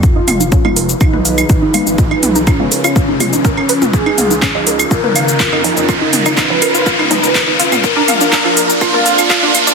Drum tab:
HH |--o---o---o---o-|--o---o---o---o-|--o---o---o---o-|--o---o---o---o-|
SH |x-xxx-xxx-xxx-xx|x-xxx-xxx-xxx-xx|x-xxx-xxx-xxx-xx|x-xxx-xxx-xxx-xx|
CL |--x--x--x--x--x-|-x--x--x--x--x--|-x--x--x--x--x--|x--x--x--x--x--x|
CP |----------------|----------------|----x-------x---|----x-------x---|
T2 |--o------o------|--o-------o----o|--o------o------|--o-------o----o|
BD |o---o---o---o---|o---o---o---o---|o---o---o---o---|o---o---o---o---|

HH |--o---o---o---o-|
SH |x-xxx-xxx-xxx-xx|
CL |--x--x--x--x--x-|
CP |----x-------x---|
T2 |--o------o------|
BD |o---o---o---o---|